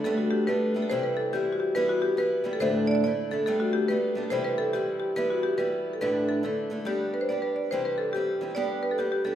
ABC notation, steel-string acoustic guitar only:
X:1
M:2/4
L:1/8
Q:"Swing" 1/4=141
K:G
V:1 name="Steel-string acoustic guitar"
[G,A,B,D]2 [G,A,B,D] [G,A,B,D] | [C,E,G,CE]2 [E,G,CE]2 | [E,G,B,E]2 [E,G,B,E] [E,G,B,E] | [D,,A,,D,A,DE]2 [D,A,DE] [D,A,DE] |
[G,A,B,D]2 [G,A,B,D] [G,A,B,D] | [C,E,G,CE]2 [E,G,CE]2 | [E,G,B,E]2 [E,G,B,E]2 | [D,,A,,D,A,DE]2 [D,A,DE] [D,A,DE] |
[G,B,DG]2 [G,B,DG]2 | [C,E,G,CG]2 [E,G,CG] [E,G,CG] | [G,B,DG]2 [G,B,DG] [G,B,DG] |]